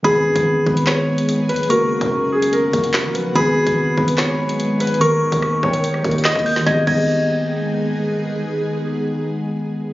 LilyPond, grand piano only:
\new Staff \with { instrumentName = "Grand piano" } { \time 4/4 \key gis \minor \tempo 4 = 145 gis'4. b'8 cis''4. b'8 | ais'4. gis'8 ais'4. b'8 | gis'4. b'8 cis''4. b'8 | ais'4. cis''4. dis''8 r8 |
dis''8 dis''2~ dis''8 r4 | r1 | }